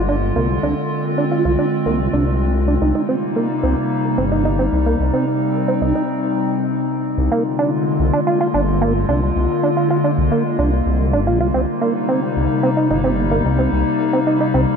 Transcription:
0.00 0.32 G1 medium
0.00 2.77 D3 medium
0.00 2.77 G#3 medium
0.00 0.59 A#3 medium
0.00 2.78 F4 medium
0.09 0.16 D4 loud
0.36 0.59 C2 medium
0.36 0.48 A#3 medium
0.63 0.75 C2 loud
0.63 2.79 C4 medium
0.63 0.75 D4 medium
1.18 1.25 D4 loud
1.32 1.44 F4 medium
1.45 1.56 C2 medium
1.45 1.52 F4 medium
1.59 1.66 D4 loud
1.86 2.09 C2 medium
1.86 1.98 A#3 medium
2.13 2.78 C2 medium
2.13 2.25 D4 medium
2.68 2.75 D4 loud
2.81 2.93 C2 loud
2.81 7.14 C3 medium
2.81 7.14 G3 medium
2.81 4.98 A#3 medium
2.81 2.94 D#4 medium
2.81 7.14 D#4 medium
2.95 3.02 D#4 medium
3.09 3.16 C4 loud
3.36 3.48 A#3 medium
3.63 3.75 C2 medium
3.63 3.75 C4 medium
4.18 4.69 G1 medium
4.18 4.25 C4 loud
4.32 4.44 D#4 medium
4.45 4.52 D#4 medium
4.59 4.66 C4 loud
4.72 4.95 C2 loud
4.86 4.98 A#3 medium
5.00 5.11 C2 loud
5.00 7.16 C4 medium
5.13 5.25 C4 medium
5.68 5.75 C4 loud
5.82 5.93 C2 medium
5.82 5.94 D#4 medium
5.95 6.02 D#4 medium
7.18 7.29 C2 loud
7.18 11.50 D3 medium
7.18 11.50 G#3 medium
7.18 14.77 A#3 medium
7.18 11.50 F4 medium
7.32 7.44 A#3 medium
7.59 7.71 D4 medium
8.00 8.11 C2 medium
8.13 8.21 D4 loud
8.27 8.39 F4 medium
8.41 8.48 F4 medium
8.54 9.05 G1 medium
8.54 8.61 D4 loud
8.81 8.93 A#3 medium
9.09 9.31 C2 loud
9.09 9.21 D4 medium
9.36 9.47 C2 loud
9.63 9.71 D4 loud
9.77 9.89 F4 medium
9.91 9.98 F4 medium
10.04 10.11 D4 loud
10.18 10.29 C2 medium
10.32 10.44 A#3 medium
10.59 10.81 C2 medium
10.59 10.71 D4 medium
10.86 11.15 C2 loud
11.13 11.29 G1 medium
11.13 11.21 D4 loud
11.27 11.42 A#1 medium
11.27 11.39 F4 medium
11.41 11.52 C2 loud
11.41 11.48 F4 medium
11.54 11.66 C2 loud
11.54 14.77 C3 medium
11.54 14.77 G3 medium
11.54 11.61 C4 loud
11.54 14.77 D#4 medium
11.82 11.93 A#3 medium
12.09 12.21 C4 medium
12.36 12.47 C2 medium
12.63 12.70 C4 loud
12.77 12.89 D#4 medium
12.91 13.42 G1 medium
12.91 12.98 D#4 medium
13.04 13.11 C4 loud
13.31 13.43 A#3 medium
13.45 13.68 C2 loud
13.59 13.71 C4 medium
13.72 13.84 C2 loud
14.13 14.21 C4 loud
14.27 14.39 D#4 medium
14.41 14.48 D#4 medium
14.54 14.66 C2 medium
14.54 14.61 C4 loud

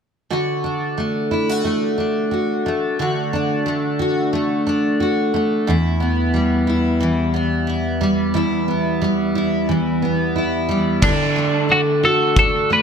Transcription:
0.30 2.98 D3 medium
0.30 1.31 F#4 medium
0.64 1.97 D4 soft
0.98 1.63 A3 soft
1.31 1.49 E4 soft
1.49 2.30 F#4 soft
1.65 2.65 A3 medium
1.98 3.32 D4 soft
2.31 2.98 F#4 soft
2.66 3.65 A3 medium
2.99 5.67 D3 medium
2.99 3.98 F#4 medium
3.33 4.65 D4 soft
3.66 4.32 A3 soft
3.99 4.99 F#4 medium
4.33 5.33 A3 medium
4.67 5.74 D4 soft
5.00 5.67 F#4 soft
5.34 5.74 A3 medium
5.67 8.33 E2 medium
5.67 6.66 E4 medium
6.00 7.33 B3 soft
6.34 8.00 G3 medium
6.67 7.66 E4 medium
7.00 9.68 E3 medium
7.34 8.67 B3 soft
7.67 8.34 E4 medium
8.01 9.00 G3 medium
8.34 11.02 E2 medium
8.34 9.34 E4 soft
8.68 10.01 B3 soft
9.02 10.67 G3 medium
9.35 10.34 E4 medium
9.69 11.02 E3 medium
10.02 11.10 B3 soft
10.36 11.10 E4 soft
10.69 11.10 G3 medium
11.02 12.82 D3 medium
11.02 11.72 D4 medium
11.02 kick medium
11.02 crash medium
11.36 12.69 A3 soft
11.69 12.36 D4 medium
11.69 11.80 F#4 medium
12.03 12.82 F#4 medium
12.03 12.38 A4 medium
12.36 12.82 D4 medium
12.36 12.72 A4 loud
12.36 kick medium
12.70 12.82 A3 soft
12.70 12.82 B4 medium

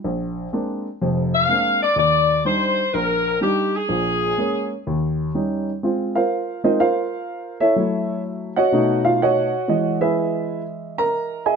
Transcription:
0.04 0.46 A#1 medium
0.53 0.86 G#3 soft
0.53 0.86 A#3 soft
0.53 0.86 C4 soft
0.53 0.87 D4 medium
1.02 1.43 F1 medium
1.02 1.43 F2 medium
1.35 1.79 F5 medium
1.49 1.82 G#3 soft
1.49 1.83 A#3 soft
1.49 1.83 C4 soft
1.49 1.83 D4 medium
1.83 1.97 D5 medium
1.96 2.38 D#2 medium
1.96 2.42 D5 loud
2.45 2.79 G3 soft
2.45 2.79 D4 soft
2.45 2.79 D#4 soft
2.45 2.94 C5 medium
2.94 3.36 A#1 medium
2.94 3.42 A#4 medium
3.41 3.75 G3 soft
3.41 3.75 D4 soft
3.41 3.75 D#4 medium
3.41 3.72 G4 medium
3.75 4.71 G#4 medium
3.89 4.31 A#1 medium
3.89 4.31 A#2 medium
4.38 4.72 G#3 soft
4.38 4.72 A#3 soft
4.38 4.72 C#4 medium
4.87 5.28 D#2 medium
5.34 5.68 G3 soft
5.34 5.69 C#4 soft
5.34 5.69 D#4 medium
5.83 6.20 G#3 soft
5.83 6.20 C4 soft
5.83 6.14 F4 medium
6.15 6.60 F4 medium
6.15 6.60 A#4 medium
6.15 6.61 C5 medium
6.15 6.60 F5 medium
6.64 6.78 G#3 soft
6.64 6.78 C4 soft
6.64 6.79 D#4 medium
6.64 6.78 F4 soft
6.64 6.79 A#4 medium
6.64 6.79 C5 medium
6.64 6.79 D#5 medium
6.80 7.56 F4 medium
6.80 7.56 A#4 medium
6.80 7.56 C5 medium
6.80 7.56 F5 medium
7.60 7.76 E4 medium
7.60 8.20 A4 medium
7.60 8.20 C#5 medium
7.60 8.20 E5 medium
7.76 8.52 F#3 soft
7.76 8.53 A3 soft
7.76 8.53 E4 medium
8.56 9.01 F#4 medium
8.56 9.02 C#5 medium
8.56 9.02 D#5 medium
8.56 9.01 F#5 medium
8.72 9.48 B2 soft
8.72 9.49 A3 soft
8.72 9.49 D#4 medium
9.05 9.20 F4 medium
9.05 9.20 F5 medium
9.22 9.98 F#4 medium
9.22 9.98 C#5 medium
9.22 9.68 D#5 medium
9.22 9.98 F#5 medium
9.68 11.56 E3 soft
9.68 11.56 G#3 soft
9.68 11.45 D#5 medium
10.01 10.61 E4 medium
10.01 10.61 G#4 medium
10.01 10.61 B4 medium
10.01 10.61 E5 medium
10.98 11.43 A#4 medium
10.98 11.42 A#5 medium
11.46 11.56 G#4 medium
11.46 11.56 D#5 medium
11.46 11.56 E5 medium
11.46 11.56 G#5 medium

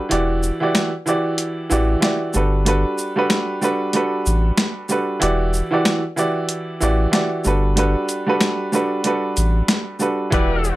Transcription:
0.09 0.52 E1 loud
0.09 0.56 E3 loud
0.09 0.57 E4 medium
0.09 0.57 F#4 medium
0.09 0.58 G4 medium
0.09 0.58 D5 loud
0.09 closed hi-hat loud
0.43 shaker soft
0.60 0.90 E3 loud
0.60 0.90 E4 medium
0.60 0.91 F#4 medium
0.60 0.91 G4 medium
0.60 0.92 D5 loud
0.75 snare loud
0.75 closed hi-hat medium
1.06 1.66 E3 medium
1.06 1.66 E4 medium
1.06 1.67 F#4 medium
1.06 1.67 G4 medium
1.06 1.68 D5 loud
1.06 shaker medium
1.38 closed hi-hat medium
1.69 1.96 A1 medium
1.69 1.99 E3 loud
1.69 2.00 E4 medium
1.69 2.00 F#4 medium
1.69 2.01 G4 medium
1.69 2.02 D5 loud
1.69 shaker medium
2.00 2.31 E3 medium
2.00 2.32 E4 medium
2.00 2.32 F#4 medium
2.00 2.32 G4 medium
2.00 2.33 D5 medium
2.00 snare loud
2.00 snare medium
2.00 closed hi-hat medium
2.34 2.85 G1 loud
2.34 2.64 G3 medium
2.34 2.64 D4 medium
2.34 2.65 F#4 medium
2.34 2.65 A4 medium
2.34 2.65 B4 medium
2.34 shaker medium
2.65 3.12 G3 medium
2.65 3.13 D4 medium
2.65 3.13 F#4 medium
2.65 3.13 A4 medium
2.65 3.14 B4 loud
2.65 closed hi-hat loud
2.98 shaker medium
3.16 3.58 G3 loud
3.16 3.59 D4 medium
3.16 3.59 F#4 medium
3.16 3.59 A4 medium
3.16 3.60 B4 loud
3.30 snare loud
3.30 snare medium
3.30 closed hi-hat medium
3.61 3.92 G3 medium
3.61 3.92 D4 medium
3.61 3.92 F#4 medium
3.61 3.93 A4 medium
3.61 3.93 B4 loud
3.61 shaker medium
3.93 4.83 G3 medium
3.93 4.84 D4 medium
3.93 4.84 F#4 medium
3.93 4.84 A4 medium
3.93 4.85 B4 loud
3.93 closed hi-hat medium
4.26 4.51 A1 medium
4.26 shaker medium
4.58 snare loud
4.58 snare medium
4.58 closed hi-hat medium
4.89 5.19 G3 medium
4.89 5.20 D4 medium
4.89 5.20 F#4 medium
4.89 5.20 A4 medium
4.89 5.21 B4 medium
4.89 shaker medium
5.20 5.62 E1 loud
5.20 5.67 E3 loud
5.20 5.67 E4 medium
5.20 5.68 F#4 medium
5.20 5.68 G4 medium
5.20 5.69 D5 loud
5.20 closed hi-hat loud
5.54 shaker medium
5.71 6.01 E3 medium
5.71 6.01 E4 medium
5.71 6.01 F#4 medium
5.71 6.02 G4 medium
5.71 6.02 D5 loud
5.85 snare loud
5.85 closed hi-hat medium
6.16 6.77 E3 loud
6.16 6.77 E4 medium
6.16 6.77 F#4 medium
6.16 6.78 G4 medium
6.16 6.78 D5 loud
6.16 shaker medium
6.49 closed hi-hat medium
6.80 7.07 A1 medium
6.80 7.10 E3 loud
6.80 7.10 E4 medium
6.80 7.11 F#4 medium
6.80 7.12 G4 medium
6.80 7.12 D5 loud
6.80 shaker medium
7.11 7.42 E3 medium
7.11 7.42 E4 medium
7.11 7.43 F#4 medium
7.11 7.43 G4 medium
7.11 7.44 D5 medium
7.11 snare loud
7.11 snare medium
7.11 closed hi-hat medium
7.44 7.96 G1 loud
7.44 7.74 G3 medium
7.44 7.75 D4 medium
7.44 7.75 F#4 medium
7.44 7.76 A4 medium
7.44 7.76 B4 medium
7.44 shaker medium
7.76 8.23 G3 medium
7.76 8.23 D4 medium
7.76 8.24 F#4 medium
7.76 8.24 A4 medium
7.76 8.24 B4 loud
7.76 closed hi-hat loud
8.09 closed hi-hat medium
8.09 shaker medium
8.26 8.69 G3 loud
8.26 8.69 D4 medium
8.26 8.70 F#4 medium
8.26 8.70 A4 medium
8.26 8.70 B4 loud
8.41 snare loud
8.41 closed hi-hat medium
8.72 9.02 G3 medium
8.72 9.03 D4 medium
8.72 9.03 F#4 medium
8.72 9.04 A4 medium
8.72 9.04 B4 loud
8.72 shaker medium
9.04 9.94 G3 medium
9.04 9.94 D4 medium
9.04 9.95 F#4 medium
9.04 9.95 A4 medium
9.04 9.95 B4 loud
9.04 closed hi-hat medium
9.37 9.62 A1 medium
9.37 closed hi-hat medium
9.37 shaker medium
9.68 snare loud
9.68 snare medium
9.68 closed hi-hat medium
9.99 10.30 G3 medium
9.99 10.30 D4 medium
9.99 10.30 F#4 medium
9.99 10.31 A4 medium
9.99 10.31 B4 medium
9.99 shaker medium
10.30 10.73 E1 loud
10.30 10.76 E3 medium
10.30 10.76 G3 medium
10.30 10.76 E4 medium
10.30 10.76 F#4 medium
10.30 10.76 G4 medium
10.30 10.76 B4 loud
10.30 10.76 D5 loud
10.30 kick loud
10.30 closed hi-hat loud
10.64 shaker soft

